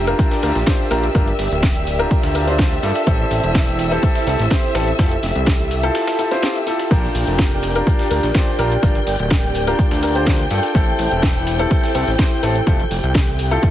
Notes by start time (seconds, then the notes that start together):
Already playing: F1 G4 A#4 E5 G5 E6
0.06 D4 F4 G4 A#4 D5, closed hi-hat, cabasa
0.19 D4 F4 G4 A#4, kick, closed hi-hat, cabasa
0.31 snare, closed hi-hat
0.43 D2 D4 F4 G4 A#4, closed hi-hat, open hi-hat, cabasa
0.55 A#1, snare, closed hi-hat, cabasa
0.67 D4 F4 G4 C5, kick, snare, closed hi-hat, cabasa
0.91 A#1 D4 F4 G4 A#4, closed hi-hat, open hi-hat, cabasa
1.03 closed hi-hat, cabasa
1.15 G1 D4 F4 G4 A#4, kick, closed hi-hat, cabasa
1.27 closed hi-hat
1.39 G1, closed hi-hat, open hi-hat, cabasa
1.51 D1, closed hi-hat, cabasa
1.63 kick, snare, closed hi-hat, cabasa
1.75 closed hi-hat
1.87 closed hi-hat, open hi-hat, cabasa
1.99 D4 F4 G4 A#4, closed hi-hat, cabasa
2.11 kick, closed hi-hat, cabasa
2.23 D2, snare, closed hi-hat
2.35 D4 F4 G4 A#4, closed hi-hat, open hi-hat, cabasa
2.47 D4 F4 G4 C5, closed hi-hat, cabasa
2.59 D4 F4 C5, kick, snare, closed hi-hat, cabasa
2.71 closed hi-hat
2.83 G2 D4 F4 G4 A4, closed hi-hat, open hi-hat, cabasa
2.95 snare, closed hi-hat, cabasa
3.07 A1 C4 E4 G4 A4, kick, closed hi-hat, cabasa
3.31 A1, closed hi-hat, open hi-hat, cabasa
3.42 E1 A4, closed hi-hat, cabasa
3.55 kick, snare, closed hi-hat, cabasa
3.68 closed hi-hat
3.79 snare, closed hi-hat, open hi-hat, cabasa
3.91 C4 E4 G4 A4 C5, closed hi-hat, cabasa
4.03 C4 E4 G4 A4, kick, closed hi-hat, cabasa
4.15 snare, closed hi-hat
4.27 C2 C4 E4 G4 A4, closed hi-hat, open hi-hat, cabasa
4.39 A1, snare, closed hi-hat, cabasa
4.51 C4 E4 G4 C5, kick, snare, closed hi-hat, cabasa
4.75 A1 C4 E4 G4 A4, snare, closed hi-hat, open hi-hat, cabasa
4.87 closed hi-hat, cabasa
4.99 F1 E4 F4 G4 A4, kick, snare, closed hi-hat, cabasa
5.11 closed hi-hat
5.21 F1 E5, snare, closed hi-hat, open hi-hat, cabasa
5.35 C2, closed hi-hat, cabasa
5.47 kick, snare, closed hi-hat, cabasa
5.59 closed hi-hat
5.71 closed hi-hat, open hi-hat, cabasa
5.83 E4 F4 G4 A4, closed hi-hat, cabasa
5.95 snare, closed hi-hat, cabasa
6.07 snare, closed hi-hat
6.19 E4 F4 G4 A4, closed hi-hat, open hi-hat, cabasa
6.31 E4 F4 G4 C5, snare, closed hi-hat, cabasa
6.43 E4 F4 G4 C5, snare, closed hi-hat, cabasa
6.55 closed hi-hat
6.67 E4 F4 G4 A4, closed hi-hat, open hi-hat, cabasa
6.79 snare, closed hi-hat, cabasa
6.91 A#1 D4 F4 G4 A#4 G5 G6, kick, closed hi-hat, crash, cabasa
6.99 A#4
7.15 A#1, closed hi-hat, open hi-hat, cabasa
7.23 D5
7.27 F1, closed hi-hat, cabasa
7.39 kick, snare, closed hi-hat, cabasa
7.51 closed hi-hat
7.63 snare, closed hi-hat, open hi-hat, cabasa
7.75 D4 F4 G4 A#4, closed hi-hat, cabasa
7.87 D4 F4 G4 A#4, kick, closed hi-hat, cabasa
7.99 snare, closed hi-hat
8.11 D2 D4 F4 G4 A#4, closed hi-hat, open hi-hat, cabasa
8.23 A#1, snare, closed hi-hat, cabasa
8.35 D4 F4 G4 C5, kick, snare, closed hi-hat, cabasa
8.59 A#1 D4 F4 G4 A#4, closed hi-hat, open hi-hat, cabasa
8.71 closed hi-hat, cabasa
8.83 G1 D4 F4 G4 A#4, kick, closed hi-hat, cabasa
8.95 closed hi-hat
9.07 G1, closed hi-hat, open hi-hat, cabasa
9.19 D1, closed hi-hat, cabasa
9.31 kick, snare, closed hi-hat, cabasa
9.43 closed hi-hat
9.55 closed hi-hat, open hi-hat, cabasa
9.67 D4 F4 G4 A#4, closed hi-hat, cabasa
9.79 kick, closed hi-hat, cabasa
9.91 D2, snare, closed hi-hat
10.03 D4 F4 G4 A#4, closed hi-hat, open hi-hat, cabasa
10.15 D4 F4 G4 C5, closed hi-hat, cabasa
10.27 kick, snare, closed hi-hat, cabasa
10.39 closed hi-hat
10.51 G2 D4 F4 G4 A4, closed hi-hat, open hi-hat, cabasa
10.63 snare, closed hi-hat, cabasa
10.75 A1 C4 E4 G4 A4, kick, closed hi-hat, cabasa
10.99 A1, closed hi-hat, open hi-hat, cabasa
11.11 E1 A4, closed hi-hat, cabasa
11.23 kick, snare, closed hi-hat, cabasa
11.35 C5, closed hi-hat
11.47 snare, closed hi-hat, open hi-hat, cabasa
11.59 C4 E4 G4 A4, closed hi-hat, cabasa
11.71 E4 G4 A4, kick, closed hi-hat, cabasa
11.83 snare, closed hi-hat
11.95 C2 C4 E4 G4 A4, closed hi-hat, open hi-hat, cabasa
12.07 A1, snare, closed hi-hat, cabasa
12.19 C4 E4 G4 C5, kick, snare, closed hi-hat, cabasa
12.43 A1 C4 E4 G4 A4, closed hi-hat, open hi-hat, cabasa
12.55 closed hi-hat, cabasa
12.67 F1 E4 F4 G4 A4, kick, closed hi-hat, cabasa
12.80 closed hi-hat
12.91 F1, closed hi-hat, open hi-hat, cabasa
12.98 E5
13.03 C2, closed hi-hat, cabasa
13.15 kick, snare, closed hi-hat, cabasa
13.27 closed hi-hat
13.39 closed hi-hat, open hi-hat, cabasa
13.51 E4 F4 G4 A4, closed hi-hat, cabasa
13.63 F1, kick, closed hi-hat, cabasa